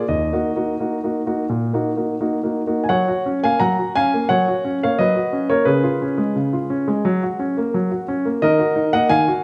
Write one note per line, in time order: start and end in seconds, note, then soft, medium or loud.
0.08 0.32 D#2 soft
0.08 2.20 D#5 medium
0.33 0.50 A#3 soft
0.33 0.50 D#4 soft
0.33 0.50 F#4 soft
0.56 0.73 A#3 soft
0.56 0.73 D#4 soft
0.56 0.73 F#4 soft
0.80 0.96 A#3 soft
0.80 0.97 D#4 soft
0.80 0.97 F#4 soft
1.03 1.20 A#3 soft
1.03 1.21 D#4 soft
1.03 1.21 F#4 soft
1.26 1.43 A#3 soft
1.26 1.44 D#4 soft
1.26 1.44 F#4 soft
1.49 1.73 A#2 soft
1.73 1.90 A#3 soft
1.73 1.91 D#4 soft
1.73 1.91 F#4 soft
1.96 2.13 A#3 soft
1.96 2.14 D#4 soft
1.96 2.14 F#4 soft
2.20 2.37 A#3 soft
2.20 2.37 D#4 soft
2.20 2.38 F#4 soft
2.43 2.60 A#3 soft
2.43 2.61 D#4 soft
2.43 2.61 F#4 soft
2.67 2.84 A#3 soft
2.67 2.84 D#4 soft
2.67 2.84 F#4 soft
2.84 2.91 G#5 medium
2.89 3.07 F#3 soft
2.89 3.39 C#5 medium
2.89 3.21 F#5 medium
3.08 3.27 F#4 soft
3.26 3.44 C#4 soft
3.43 3.61 A#3 soft
3.43 3.60 F5 medium
3.43 3.61 G#5 medium
3.60 3.77 F#3 soft
3.60 3.93 F#5 medium
3.60 3.91 A#5 medium
3.79 3.96 F#4 soft
3.96 4.13 C#4 soft
3.96 4.28 F5 medium
3.96 4.26 G#5 medium
4.14 4.31 A#3 soft
4.29 4.46 F#3 soft
4.29 4.78 C#5 medium
4.29 4.77 F#5 medium
4.48 4.66 F#4 soft
4.65 4.83 C#4 soft
4.83 5.00 A#3 soft
4.83 4.99 C#5 medium
4.83 5.00 F5 medium
4.99 5.16 F#3 soft
4.99 5.48 B4 medium
4.99 5.50 D#5 medium
5.16 5.34 F#4 soft
5.33 5.51 C#4 soft
5.50 5.67 A#3 soft
5.50 5.67 A#4 medium
5.50 5.67 C#5 medium
5.65 5.83 C#3 soft
5.65 8.04 G#4 soft
5.65 8.03 B4 medium
5.83 6.02 F4 soft
6.02 6.20 C#4 medium
6.18 6.36 G#3 soft
6.36 6.53 C#3 medium
6.53 6.71 F4 soft
6.70 6.88 C#4 soft
6.88 7.05 G#3 soft
7.05 7.22 F#3 medium
7.23 7.41 F#4 soft
7.39 7.57 C#4 soft
7.57 7.75 A#3 soft
7.74 7.91 F#3 medium
7.91 8.09 F#4 soft
8.08 8.26 C#4 medium
8.25 8.42 A#3 soft
8.42 8.59 D#3 medium
8.42 8.90 A#4 medium
8.42 8.89 D#5 medium
8.59 8.77 F#4 soft
8.76 8.94 D#4 medium
8.93 9.11 A#3 medium
8.93 9.10 D#5 medium
8.93 9.10 F#5 medium
9.09 9.26 D#3 soft
9.09 9.42 F5 medium
9.09 9.30 G#5 medium
9.28 9.44 F#4 medium